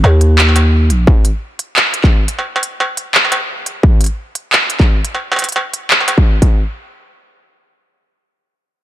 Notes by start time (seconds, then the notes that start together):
0.04 D#2, struck metal
0.21 closed hi-hat
0.38 clap
0.49 struck metal
0.56 closed hi-hat, struck metal
0.90 A#1, closed hi-hat
1.07 kick
1.25 closed hi-hat
1.59 closed hi-hat
1.76 clap
1.94 closed hi-hat
2.04 kick, clap
2.28 closed hi-hat
2.39 struck metal
2.56 struck metal
2.63 closed hi-hat
2.80 struck metal
2.97 closed hi-hat
3.15 clap
3.25 struck metal
3.32 closed hi-hat, struck metal
3.66 closed hi-hat
3.83 kick
4.01 closed hi-hat
4.04 closed hi-hat
4.06 closed hi-hat
4.35 closed hi-hat
4.53 clap
4.70 closed hi-hat
4.80 kick, clap
5.05 closed hi-hat
5.15 struck metal
5.32 struck metal
5.36 closed hi-hat, struck metal
5.39 struck metal
5.42 closed hi-hat, struck metal
5.45 struck metal
5.49 closed hi-hat
5.52 closed hi-hat, struck metal
5.74 closed hi-hat
5.90 clap
6.01 struck metal
6.08 closed hi-hat, struck metal
6.18 kick
6.42 kick, closed hi-hat